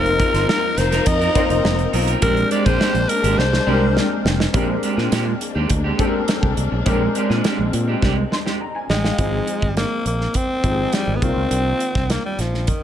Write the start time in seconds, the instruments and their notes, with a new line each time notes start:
Already playing: fretless electric bass F1, string section F3 D#4 A#4, grand piano A#3 C4 D#4 F4 C5, clean electric guitar D#4, alto saxophone A#4
0.05 muted clean electric guitar stroke, closed hi-hat
0.19 clean electric guitar D#4 F4 A#4, kick, closed hi-hat
0.34 fretless electric bass G1, clean electric guitar D#4 F4 C5, snare, closed hi-hat
0.48 clean electric guitar D#4 F4 A#4, alto saxophone A#4, snare
0.63 muted clean electric guitar stroke
0.77 fretless electric bass F1, alto saxophone C5, muted clean electric guitar stroke, snare, closed hi-hat
0.92 clean electric guitar D#4 F4 A#4, snare, closed hi-hat
1.06 fretless electric bass F2, alto saxophone D#5, muted clean electric guitar stroke, kick, closed hi-hat
1.20 clean electric guitar D#4 F4 A#4, closed hi-hat
1.35 grand piano A#3 C4 D#4 F4 C5, clean electric guitar D#4 F4 A#4, kick, closed hi-hat
1.50 fretless electric bass F1, alto saxophone D#5, muted clean electric guitar stroke, closed hi-hat
1.64 fretless electric bass F1, muted clean electric guitar stroke, snare
1.79 muted clean electric guitar stroke, closed hi-hat
1.93 fretless electric bass B1, clean electric guitar D#4 F4 A#4, open hi-hat
2.07 clean electric guitar D#4 F4 A#4, closed hi-hat
2.22 fretless electric bass A#1, grand piano G#3 C4 D4 G4 A#4, clean electric guitar G#3 D4 G4, string section G#3 A#3 D4, alto saxophone A#4, kick, closed hi-hat
2.37 muted clean electric guitar stroke, closed hi-hat
2.51 clean electric guitar G#3 D4 G4, alto saxophone D5, closed hi-hat
2.66 fretless electric bass A#1, clean electric guitar G#3 D4 G#4, alto saxophone C5, kick, closed hi-hat
2.80 clean electric guitar G#3 D4 G4, snare
2.94 fretless electric bass A#1, muted clean electric guitar stroke, closed hi-hat
3.09 alto saxophone A#4, muted clean electric guitar stroke, closed hi-hat
3.23 fretless electric bass G#1, clean electric guitar G#3 D4 G4, closed hi-hat
3.38 fretless electric bass C2, alto saxophone C5, snare
3.53 muted clean electric guitar stroke, snare
3.66 fretless electric bass C2, grand piano G#3 C4 D4 G4 A#4, clean electric guitar G#3 D4 G4
3.82 muted clean electric guitar stroke
3.96 muted clean electric guitar stroke, snare
4.10 muted clean electric guitar stroke
4.25 fretless electric bass F1, snare
4.39 muted clean electric guitar stroke, snare
4.53 fretless electric bass A#1, grand piano G#3 C4 D4 G4 A#4, clean electric guitar G#3 D4 G4, string section G#3 A#3 D4, kick, closed hi-hat
4.69 muted clean electric guitar stroke
4.83 clean electric guitar G#3 D4 G4, closed hi-hat
4.97 fretless electric bass A#2, clean electric guitar G#3 D4 G#4, snare
5.12 fretless electric bass A#2, clean electric guitar G#3 D4 G4, snare, closed hi-hat
5.27 muted clean electric guitar stroke
5.41 muted clean electric guitar stroke, closed hi-hat
5.55 fretless electric bass D#2, clean electric guitar G#3 D4 G4
5.70 fretless electric bass D2, muted clean electric guitar stroke, kick, closed hi-hat
5.84 clean electric guitar G#3 D4 G4
5.98 grand piano G#3 C4 D4 G4 A4, clean electric guitar G#3 D4 G4, kick, closed hi-hat
6.06 grand piano A#4
6.14 muted clean electric guitar stroke
6.28 muted clean electric guitar stroke, snare, closed hi-hat
6.43 fretless electric bass C2, muted clean electric guitar stroke, kick
6.57 fretless electric bass C2, closed hi-hat
6.72 fretless electric bass B1, muted clean electric guitar stroke
6.85 fretless electric bass A#1, grand piano G#3 C4 C#4 G4 A#4, clean electric guitar G#3 D4 G4, string section C4, kick, closed hi-hat
6.92 grand piano D4
7.01 muted clean electric guitar stroke
7.15 clean electric guitar G#3 D4 G4, closed hi-hat
7.30 fretless electric bass A#2, clean electric guitar G#3 D4 G#4, snare
7.44 clean electric guitar G#3 D4 G4, snare, closed hi-hat
7.59 fretless electric bass A#1, muted clean electric guitar stroke
7.73 fretless electric bass A#2, muted clean electric guitar stroke, closed hi-hat
7.88 clean electric guitar G#3 D4 G4
8.02 fretless electric bass C2, clean electric guitar G#3 D4 G4, kick, snare
8.16 muted clean electric guitar stroke
8.31 grand piano C6, muted clean electric guitar stroke, snare
8.46 clean electric guitar G#3 D4 G4, snare
8.60 grand piano A#5, muted clean electric guitar stroke
8.75 grand piano G#5, muted clean electric guitar stroke
8.89 fretless electric bass A1, alto saxophone G#3, grand piano G5, snare
9.04 grand piano F5, muted clean electric guitar stroke, snare
9.18 fretless electric bass G#1, grand piano F3 G#3 C4 D#4 G#4, kick, closed hi-hat
9.47 closed hi-hat
9.62 fretless electric bass G#1, kick
9.77 alto saxophone A#3, snare, closed hi-hat
10.05 fretless electric bass A#1, alto saxophone A#3, closed hi-hat
10.21 snare
10.34 alto saxophone C4, kick, closed hi-hat
10.63 fretless electric bass G#1, grand piano F3 G#3 C4 D#4 G4, kick, closed hi-hat
10.71 grand piano G#4
10.93 alto saxophone G3, snare, closed hi-hat
11.07 fretless electric bass G#1
11.16 alto saxophone B3
11.21 fretless electric bass C2, grand piano D#3 A#3 C4 D4 F4, alto saxophone C4, kick, closed hi-hat
11.36 fretless electric bass C#2
11.51 fretless electric bass C2, closed hi-hat
11.80 closed hi-hat
11.95 fretless electric bass C2, kick, snare
12.10 alto saxophone A#3, snare, closed hi-hat
12.26 alto saxophone G3
12.38 fretless electric bass A#1, alto saxophone F3, snare, closed hi-hat
12.54 snare
12.67 alto saxophone D#3, kick, closed hi-hat